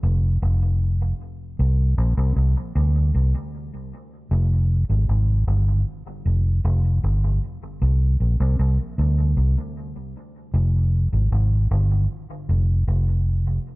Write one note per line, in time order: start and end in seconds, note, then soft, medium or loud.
0.03 0.37 F1 medium
0.42 1.11 F1 medium
1.59 1.93 C2 medium
1.98 2.15 A#1 medium
2.17 2.34 C2 medium
2.36 2.54 C2 medium
2.75 3.10 D2 loud
3.14 3.32 C2 medium
4.31 4.83 F1 loud
4.90 5.06 G#1 medium
5.09 5.43 G#1 medium
5.47 5.82 G1 medium
6.25 6.60 F1 medium
6.65 6.99 F1 medium
7.04 7.38 G1 medium
7.82 8.16 C2 medium
8.20 8.38 A#1 medium
8.40 8.57 C2 medium
8.59 8.77 C2 medium
8.98 9.33 D2 loud
9.37 9.54 C2 medium
10.54 11.06 F1 medium
11.13 11.30 G#1 medium
11.32 11.67 G#1 loud
11.71 12.06 G1 medium
12.49 12.83 F1 medium
12.87 13.57 F1 medium